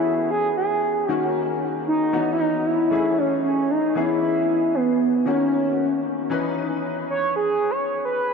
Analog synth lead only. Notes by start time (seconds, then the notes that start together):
Already playing: E4
0.31 G#4
0.57 G#4
1.11 F#4
1.88 D#4
2.33 E4
2.40 D#4
2.66 E4
3.18 C#4
3.44 C#4
3.70 D#4
3.96 E4
4.75 B3
5.27 C#4
7.10 C#5
7.36 G#4
7.71 C#5
8.05 B4